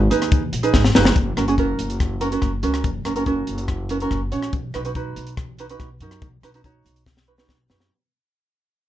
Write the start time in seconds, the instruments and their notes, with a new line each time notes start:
0.10 upright bass D#2, ukulele D#4 G#4 B4, closed hi-hat
0.22 cross-stick, closed hi-hat
0.32 kick, closed hi-hat
0.53 upright bass A#1, closed hi-hat
0.63 ukulele D#4 G#4 B4, closed hi-hat
0.74 upright bass G#1, kick, snare
0.85 snare
0.95 upright bass F#1, ukulele D#4 G#4 B4, snare
1.05 snare
1.16 upright bass F#1, kick, closed hi-hat
1.37 upright bass F#1, ukulele C#4 F#4 A#4, cross-stick, closed hi-hat
1.48 ukulele C#4 F#4 G#4, closed hi-hat
1.58 ukulele C#4 F#4 A#4, kick, closed hi-hat
1.78 upright bass F#1, closed hi-hat
1.90 closed hi-hat
2.00 kick, cross-stick, closed hi-hat
2.21 ukulele C#4 F#4 A#4, closed hi-hat
2.32 ukulele C#4 F#4 A#4, closed hi-hat
2.42 upright bass F#1, kick, cross-stick, closed hi-hat
2.63 upright bass C#2, ukulele C#4 F#4 A#4, closed hi-hat
2.74 cross-stick, closed hi-hat
2.84 upright bass F#1, kick, closed hi-hat
3.05 upright bass F#1, ukulele C#4 F#4 A#4, cross-stick, closed hi-hat
3.16 ukulele C#4 F#4 A#4, closed hi-hat
3.26 ukulele C#4 F#4 A#4, kick, closed hi-hat
3.47 upright bass F#1, closed hi-hat
3.58 closed hi-hat
3.68 kick, cross-stick, closed hi-hat
3.89 ukulele C#4 F#4 A#4, closed hi-hat
4.00 ukulele C#4 F#4 A#4, closed hi-hat
4.11 upright bass F#1, kick, cross-stick, closed hi-hat
4.32 upright bass A#1, ukulele C#4 F#4 C#5, closed hi-hat
4.43 cross-stick, closed hi-hat
4.53 upright bass B1, kick, closed hi-hat
4.74 upright bass B1, ukulele D#4 F#4 B4, cross-stick, closed hi-hat
4.85 ukulele D#4 F#4 B4, closed hi-hat
4.95 ukulele D#4 F#4 B4, kick, closed hi-hat
5.16 upright bass B1, closed hi-hat
5.27 closed hi-hat
5.37 kick, cross-stick, closed hi-hat
5.59 ukulele D#4 F#4 B4, closed hi-hat
5.70 ukulele D#4 F#4 B4, closed hi-hat
5.80 upright bass B1, kick, cross-stick, closed hi-hat
6.00 upright bass F#2, ukulele D#4 F#4 A#4, closed hi-hat
6.11 cross-stick, closed hi-hat
6.22 upright bass B1, kick, closed hi-hat
6.42 upright bass B1, ukulele D#4 F#4 B4, cross-stick, closed hi-hat
6.54 ukulele D#4 F#4 B4, closed hi-hat
6.64 ukulele D#4 F#4 C#5, kick, closed hi-hat
6.85 upright bass B1, closed hi-hat
6.96 closed hi-hat
7.06 kick, snare
7.17 snare
7.28 ukulele D#4 F#4 B4
7.38 ukulele D#4 F#4 B4, snare
7.49 upright bass B1, kick, snare
7.70 upright bass F#2, ukulele D#4 F#4 B4, snare
7.80 snare